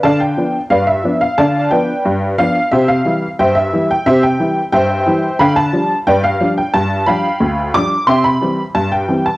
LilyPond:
<<
  \new Staff \with { instrumentName = "Honky-tonk piano" } { \time 2/4 \key c \major \tempo 4 = 89 <d'' f'' a''>16 g''8. <b' d'' f''>16 e''8 f''16 | <d'' f'' a''>8 <b' d'' g''>4 f''8 | <g' c'' e''>16 f''8. <c'' e'' g''>16 e''8 g''16 | <g' c'' e''>16 g''8. <c'' e'' g''>4 |
<f'' g'' b''>16 a''8. <b' d'' g''>16 f''8 g''16 | a''8 <f'' g'' b''>4 d'''8 | <e'' g'' c'''>16 b''8. a''16 g''8 a''16 | }
  \new Staff \with { instrumentName = "Honky-tonk piano" } { \clef bass \time 2/4 \key c \major d8 <f b d'>8 g,8 <f b d'>8 | d8 <f b d'>8 g,8 <f b d'>8 | c8 <e g e'>8 g,8 <e g e'>8 | c8 <e g e'>8 g,8 <e g e'>8 |
d8 <f g d'>8 g,8 <f g d'>8 | g,8 <f g d'>8 d,8 <f g d'>8 | c8 <e g c'>8 g,8 <e g c'>8 | }
>>